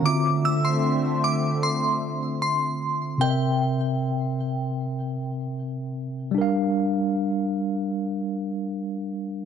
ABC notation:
X:1
M:4/4
L:1/16
Q:1/4=76
K:Gdor
V:1 name="Synth bell"
d'2 e' c'3 d'2 c'4 c'4 | g12 z4 | z16 |]
V:2 name="Tine electric piano"
[D,CFe]16 | [C,CB_e=e]16 | [G,DBf]16 |]
V:3 name="Analog synth pad"
[D,A,Ce]16 | z16 | z16 |]